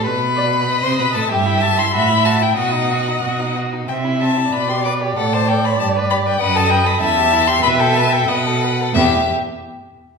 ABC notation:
X:1
M:2/4
L:1/16
Q:1/4=94
K:Em
V:1 name="Violin"
b4- b c' b a | g2 a c' b2 a g | f6 z2 | g2 a2 b c' d'2 |
f a g b a2 b g | f a g b a3 c' | b g a g f4 | e2 z6 |]
V:2 name="Viola"
B2 d2 ^d4 | e4 e4 | ^d6 z2 | e4 d4- |
d8 | ^d4 e4 | e4 ^d2 z2 | B,2 z6 |]
V:3 name="Violin"
B4- B c B A | G E G E F E F E | F ^D F D F D F D | C E C E B G B G |
A c A c G B G B | B A B A E G E G | B A B A B A B A | G2 z6 |]
V:4 name="Cello" clef=bass
B,,4- B,, C, B,, A,, | G,,4 A,,4 | B,,4 B,,4 | C,4 B,,4 |
A,,4 G,,4 | F,,4 E,,4 | B,,4 B,,4 | E,,2 z6 |]